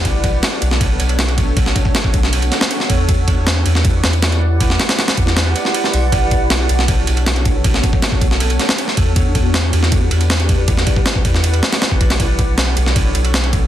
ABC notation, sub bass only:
X:1
M:4/4
L:1/8
Q:1/4=158
K:Bm
V:1 name="Sub bass" clef=bass
B,,,2 z B,,,2 B,,,3- | B,,, z2 B,,,2 z2 E,,- | E,,3 E,,2 E,,3- | E,, z2 E,,2 z2 B,,,- |
B,,,3 B,,,2 B,,,3- | B,,, z2 B,,,2 z2 E,,- | E,,3 E,,2 E,,3- | E,, z2 E,,2 z2 B,,,- |
B,,,3 B,,,2 B,,,3 |]